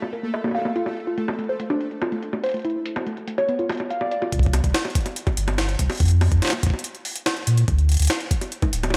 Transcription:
Already playing: A3 A4
0.02 closed hi-hat, high bongo
0.13 A#4, closed hi-hat
0.23 A#3, closed hi-hat
0.34 closed hi-hat, high bongo
0.44 A#3, closed hi-hat, high bongo
0.48 high bongo
0.51 closed hi-hat, high bongo
0.55 F5, high bongo
0.58 high bongo
0.62 A#3, closed hi-hat, high bongo
0.65 high bongo
0.76 F4, closed hi-hat
0.86 closed hi-hat, high bongo
0.93 closed hi-hat
0.97 closed hi-hat
1.00 closed hi-hat
1.07 F4, closed hi-hat
1.18 A3, closed hi-hat
1.28 closed hi-hat, high bongo
1.33 closed hi-hat
1.39 A3, closed hi-hat
1.44 closed hi-hat
1.49 C5, closed hi-hat
1.60 A3, closed hi-hat
1.70 D4, closed hi-hat, high bongo
1.81 closed hi-hat
1.91 closed hi-hat
2.02 F4, closed hi-hat, high bongo
2.12 A3, closed hi-hat
2.23 closed hi-hat
2.33 A3, closed hi-hat, high bongo
2.44 C5, closed hi-hat
2.46 closed hi-hat
2.49 closed hi-hat
2.51 A3, closed hi-hat
2.54 closed hi-hat
2.57 closed hi-hat
2.59 closed hi-hat
2.62 closed hi-hat
2.65 E4, closed hi-hat
2.70 closed hi-hat
2.86 closed hi-hat
2.96 F#4, closed hi-hat, high bongo
3.07 A3, closed hi-hat
3.17 closed hi-hat
3.28 A3, closed hi-hat
3.38 C#5, closed hi-hat, high bongo
3.49 B3, closed hi-hat
3.59 F4, closed hi-hat
3.69 closed hi-hat, high bongo
3.72 closed hi-hat
3.75 closed hi-hat
3.77 closed hi-hat
3.80 closed hi-hat, high bongo
3.90 F5, closed hi-hat
4.01 D5, high bongo
4.11 D5, closed hi-hat
4.22 F4, closed hi-hat, high bongo
4.32 C2, kick, closed hi-hat
4.39 kick, closed hi-hat
4.46 kick
4.53 closed hi-hat, high bongo
4.64 C2, kick, closed hi-hat
4.74 snare, closed hi-hat
4.85 closed hi-hat, high bongo
4.90 closed hi-hat
4.95 kick, closed hi-hat
5.01 closed hi-hat
5.06 closed hi-hat, high bongo
5.16 closed hi-hat
5.27 kick, closed hi-hat, high bongo
5.37 G1, closed hi-hat
5.48 closed hi-hat, high bongo
5.58 snare, closed hi-hat
5.69 closed hi-hat
5.79 C2, kick, closed hi-hat
5.90 open hi-hat, high bongo
5.92 open hi-hat
5.95 open hi-hat
5.97 closed hi-hat, open hi-hat
6.00 F2, kick, open hi-hat
6.03 open hi-hat
6.05 open hi-hat
6.08 closed hi-hat, open hi-hat
6.21 open hi-hat, high bongo
6.32 F2, kick, closed hi-hat
6.42 snare, closed hi-hat
6.45 snare
6.47 snare
6.50 snare, closed hi-hat, high bongo
6.63 kick, closed hi-hat
6.67 kick
6.70 kick, high bongo
6.79 closed hi-hat
6.84 closed hi-hat
6.95 closed hi-hat
7.05 open hi-hat
7.16 closed hi-hat
7.26 snare, closed hi-hat
7.37 closed hi-hat
7.47 A#2, closed hi-hat
7.58 closed hi-hat
7.68 D2, kick, closed hi-hat
7.78 closed hi-hat
7.89 closed hi-hat
7.92 closed hi-hat
7.94 closed hi-hat
7.97 D2, closed hi-hat
8.00 closed hi-hat
8.02 closed hi-hat
8.05 closed hi-hat
8.07 snare, closed hi-hat
8.20 closed hi-hat
8.31 kick, closed hi-hat
8.41 closed hi-hat, high bongo
8.52 closed hi-hat
8.62 kick, closed hi-hat, high bongo
8.73 D1, closed hi-hat
8.83 closed hi-hat, high bongo
8.90 snare, high bongo

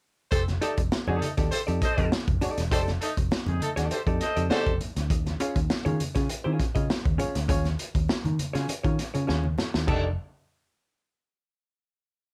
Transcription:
0.31 F1 G4 A4 C5, kick, closed hi-hat
0.48 snare, closed hi-hat, high conga
0.61 A3 D#4 G4 A4 D5, closed hi-hat
0.78 F1, kick, closed hi-hat
0.92 muted picked electric bass stroke, snare, muted conga
1.07 F2 C4 D#4 G4 G#4 A4 D5, high conga, low conga
1.21 A3 D#4 A4, closed hi-hat, muted conga, high conga
1.37 D#2 D#4 G4 A4 D5, kick, snare, closed hi-hat
1.51 G4 A4 C5, muted picked electric bass stroke, closed hi-hat
1.67 F2 D#4 G4 A4 D5, closed hi-hat
1.82 A4 C5 D#5, kick, snare, closed hi-hat
1.97 F2 D#4 G4 A4 D#5, kick, closed hi-hat, high conga
2.12 muted picked electric bass stroke, snare
2.28 F1, kick, closed hi-hat, high conga
2.41 D#4 G4 A4 D5, closed hi-hat, muted conga, low conga
2.58 E1, snare, closed hi-hat
2.71 F1 D#4 G4 A4 C5 D5, kick, closed hi-hat
2.87 snare, closed hi-hat, high conga
3.01 A3 D#4 A4, closed hi-hat
3.17 F1, kick, closed hi-hat
3.31 muted picked electric bass stroke, snare, muted conga
3.46 F2 C4 D#4 G#4, closed hi-hat, high conga, low conga
3.61 A3 D#4 A4, closed hi-hat, muted conga, high conga
3.76 D#2 D#4 G4 A4 D5, snare, closed hi-hat
3.90 G4 A4 C5, muted picked electric bass stroke, closed hi-hat, muted conga
4.07 F2 D#4 G4 A4 D5, kick, closed hi-hat
4.21 A4 C5 D#5, snare, closed hi-hat, muted conga
4.36 F2 D#4 G4 A4 D5, closed hi-hat, high conga
4.50 D#4 G4 A4 C5 D5, muted picked electric bass stroke, snare
4.66 F1, kick, closed hi-hat, high conga
4.81 closed hi-hat, muted conga, low conga
4.96 D2, snare, closed hi-hat
5.10 D#2, kick, closed hi-hat, muted conga
5.26 snare, closed hi-hat, high conga
5.40 C#4 F4 G#4 C#5, closed hi-hat, muted conga
5.56 D#2, kick, closed hi-hat
5.70 muted picked electric bass stroke, snare, muted conga
5.85 D#3 C#4 F4 G#4 C#5, closed hi-hat, high conga, low conga
6.00 closed hi-hat, muted conga, high conga
6.15 C#3 C#4 F4 G#4 C#5, kick, snare, closed hi-hat
6.29 muted picked electric bass stroke, closed hi-hat, muted conga
6.44 D#3 C#4 F4 G#4 C#5
6.60 kick, snare, closed hi-hat, muted conga
6.75 C#3 C#4 F4 G#4 D#5, kick, closed hi-hat, high conga
6.90 muted picked electric bass stroke, snare, muted conga
7.05 D#2, kick, closed hi-hat, high conga
7.18 C#4 F4 G#4 C#5, closed hi-hat, low conga
7.35 D2, snare, closed hi-hat
7.48 D#2 C#4 F4 G#4 C#5, kick, closed hi-hat, low conga
7.64 snare, closed hi-hat, high conga
7.79 closed hi-hat, muted conga
7.95 D#2, kick, closed hi-hat
8.09 muted picked electric bass stroke, snare, muted conga
8.25 D#3, closed hi-hat, high conga, low conga
8.39 closed hi-hat, muted conga, high conga
8.53 C#3 C#4 F4 G#4 C#5, snare, closed hi-hat
8.68 muted picked electric bass stroke, closed hi-hat, muted conga
8.83 D#3 C#4 F4 G#4 C#5, kick, closed hi-hat
8.99 snare, closed hi-hat
9.14 C#3 C#4 F4 G#4 C#5, closed hi-hat, high conga
9.27 D#2 C#4 F4 G#4 C#5, snare, muted conga
9.44 high conga
9.58 snare, muted conga, low conga
9.74 D#2, snare
9.87 F1 D#3 D4 D#4 G4 A4 D5, kick, crash, high conga

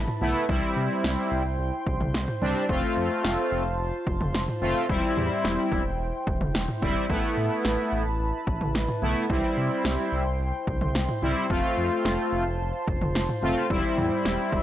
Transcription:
Already playing: E4 B4 A5 B5
0.08 mid tom
0.21 B1 A3 B3 E4, mid tom
0.49 C2 G3 C4 E4 C5 G5 C6, kick
0.77 C3
1.04 C2, snare
1.32 C2
1.45 C2
1.59 C2
1.87 C2, kick
2.00 C2, mid tom
2.14 C2, snare
2.28 mid tom
2.42 C2 G3 C4 D4, mid tom
2.69 F1 A3 C4 F4 A5 C6, kick
2.97 F2
3.24 F1, snare
3.52 F1
3.66 F1
3.79 F1
4.07 F1, kick
4.21 F1, mid tom
4.34 F1, snare
4.48 mid tom
4.62 F1 A3 C4 F4, mid tom
4.89 E1 G3 C4 E4 G5, kick
5.17 E2, mid tom
5.44 E1, snare
5.72 E1, kick
5.86 E1
5.99 E1
6.27 E1, kick
6.41 E1, mid tom
6.55 E1, snare
6.68 mid tom
6.82 E1 G3 C4 E4, kick, mid tom
7.10 A1 A3 B3 E4 B4 A5 B5, kick
7.37 A2
7.65 A1, snare
7.92 A1
8.06 A1
8.20 A1
8.47 A1, kick
8.61 A1, mid tom
8.75 A1, snare
8.88 mid tom
9.02 B1 A3 B3 E4, mid tom
9.30 C2 G3 C4 E4 C5 G5 C6, kick
9.57 C3
9.85 C2, snare
10.12 C2
10.26 C2
10.40 C2
10.67 C2, kick
10.81 C2, mid tom
10.95 C2, snare
11.09 mid tom
11.22 C2 G3 C4 E4, mid tom
11.50 F1 A3 C4 F4 C5 A5, kick
11.78 F2
12.05 F1, snare
12.33 F1
12.46 F1
12.60 F1
12.88 F1, kick
13.01 F1, mid tom
13.15 F1, snare
13.29 mid tom
13.43 F1 A3 C4 F4, mid tom
13.70 E1 G3 C4 E4 G5, kick
13.98 E2, mid tom
14.25 E1, snare
14.53 E1, kick

